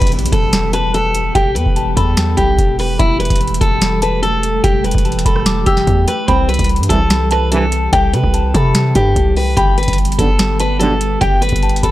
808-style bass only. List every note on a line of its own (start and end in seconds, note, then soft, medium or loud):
0.02 0.24 E1 loud
0.22 0.32 B1 loud
0.32 1.31 E1 loud
1.35 1.57 E1 loud
1.56 1.65 E2 loud
1.66 1.96 E1 loud
1.97 2.36 E2 loud
2.38 2.58 B1 loud
2.58 2.98 E1 loud
3.00 3.29 E1 loud
3.30 3.60 E1 loud
3.61 4.60 E1 loud
4.64 4.94 E1 loud
4.95 5.24 E1 loud
5.26 5.65 E1 loud
5.67 5.86 E1 loud
5.87 6.07 E2 loud
6.28 6.58 C2 loud
6.59 6.81 C2 loud
6.80 6.89 G2 loud
6.90 7.89 C2 loud
7.93 8.15 C2 loud
8.13 8.23 C3 loud
8.24 8.53 C2 loud
8.54 8.94 C3 loud
8.95 9.15 G2 loud
9.16 9.55 C2 loud
9.57 9.87 G1 loud
9.88 10.18 G1 loud
10.19 11.17 G1 loud
11.21 11.51 G1 loud
11.52 11.82 G1 loud
11.83 11.91 G1 loud